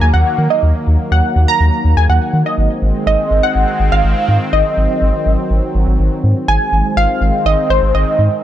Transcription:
Already playing: analog synth pad D#3 F#3 A#3
0.01 analog synth bass D#2, analog polysynth G#5
0.14 analog synth bass D#2, analog polysynth F#5
0.38 analog synth bass D#3
0.50 analog polysynth D#5
0.63 analog synth bass D#2
0.87 analog synth bass D#2
1.12 analog synth bass D#2, analog polysynth F#5
1.36 analog synth bass D#2
1.48 analog polysynth A#5
1.60 analog synth bass D#2
1.85 analog synth bass D#2
1.97 analog synth bass D#2, analog polysynth G#5
2.09 analog synth bass D#2, analog polysynth F#5
2.33 analog synth bass D#3
2.46 analog polysynth D#5
2.58 analog synth bass G#1, analog synth pad D#3 G#3 C4
2.82 analog synth bass G#1
3.07 analog synth bass G#1, analog polysynth D#5
3.31 analog synth bass G#1
3.43 analog polysynth F#5
3.55 analog synth bass G#1
3.80 analog synth bass G#1
3.92 analog synth bass G#1, analog polysynth F5
4.04 analog synth bass G#1
4.28 analog synth bass G#2
4.53 analog synth bass G#1, analog synth pad F#3, analog polysynth D#5
4.77 analog synth bass G#1
5.02 analog synth bass G#1
5.26 analog synth bass G#1
5.50 analog synth bass G#1
5.75 analog synth bass G#1
5.87 analog synth bass G#1
5.99 analog synth bass G#1
6.24 analog synth bass G#2
6.48 analog synth bass G#1, analog synth pad D#3 G#3 C4, analog polysynth G#5
6.72 analog synth bass G#1
6.97 analog synth bass G#1, analog polysynth F5
7.21 analog synth bass G#1
7.46 analog synth bass G#1, analog polysynth D#5
7.70 analog synth bass G#1, analog polysynth C5
7.82 analog synth bass G#1
7.94 analog synth bass G#1, analog polysynth D#5
8.19 analog synth bass G#2

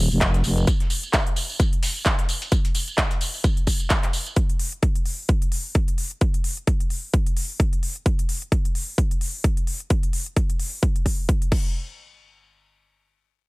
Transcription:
Already playing: downlifter
0.11 fm bass F1, tambourine
0.21 kick, snare, clap, closed hi-hat, tambourine
0.34 snare, closed hi-hat
0.44 fm bass F1, open hi-hat, tambourine
0.57 closed hi-hat, tambourine
0.67 kick, closed hi-hat, tambourine
0.80 snare, closed hi-hat
0.90 open hi-hat, tambourine
1.03 closed hi-hat, tambourine
1.13 kick, snare, clap, closed hi-hat, tambourine
1.27 closed hi-hat
1.36 open hi-hat, tambourine
1.50 tambourine
1.60 kick, closed hi-hat, tambourine
1.73 closed hi-hat
1.83 open hi-hat, tambourine
1.96 tambourine
2.05 kick, snare, clap, closed hi-hat, tambourine
2.19 snare, closed hi-hat
2.29 open hi-hat, tambourine
2.42 closed hi-hat, tambourine
2.52 kick, closed hi-hat, tambourine
2.65 closed hi-hat
2.75 open hi-hat, tambourine
2.88 closed hi-hat, tambourine
2.98 kick, snare, clap, closed hi-hat, tambourine
3.11 closed hi-hat
3.21 open hi-hat, tambourine
3.34 tambourine
3.44 kick, closed hi-hat, tambourine
3.57 closed hi-hat
3.67 kick, open hi-hat, tambourine
3.80 closed hi-hat, tambourine
3.90 kick, snare, clap, closed hi-hat, tambourine
4.03 snare, clap, closed hi-hat
4.13 open hi-hat, tambourine
4.26 closed hi-hat, tambourine
4.36 kick, closed hi-hat
4.50 closed hi-hat
4.59 open hi-hat
4.72 closed hi-hat
4.83 kick, closed hi-hat
4.95 closed hi-hat
5.06 open hi-hat
5.29 kick, closed hi-hat
5.42 closed hi-hat
5.52 open hi-hat
5.75 kick, closed hi-hat
5.88 closed hi-hat
5.98 open hi-hat
6.11 closed hi-hat
6.21 kick, closed hi-hat
6.34 closed hi-hat
6.44 open hi-hat
6.57 closed hi-hat
6.67 kick, closed hi-hat
6.80 closed hi-hat
6.90 open hi-hat
7.13 kick, closed hi-hat
7.26 closed hi-hat
7.37 open hi-hat
7.60 kick, closed hi-hat
7.73 closed hi-hat
7.83 open hi-hat
7.96 closed hi-hat
8.06 kick, closed hi-hat
8.19 closed hi-hat
8.29 open hi-hat
8.42 closed hi-hat
8.52 kick, closed hi-hat
8.65 closed hi-hat
8.75 open hi-hat
8.98 kick, closed hi-hat
9.11 closed hi-hat
9.21 open hi-hat
9.44 kick, closed hi-hat
9.57 closed hi-hat
9.67 open hi-hat
9.80 closed hi-hat
9.90 kick, closed hi-hat
10.03 closed hi-hat
10.13 open hi-hat
10.26 closed hi-hat
10.36 kick, closed hi-hat
10.50 closed hi-hat
10.60 open hi-hat
10.83 kick, closed hi-hat
10.96 closed hi-hat
11.06 kick, open hi-hat
11.29 kick, closed hi-hat
11.42 closed hi-hat
11.52 kick, crash

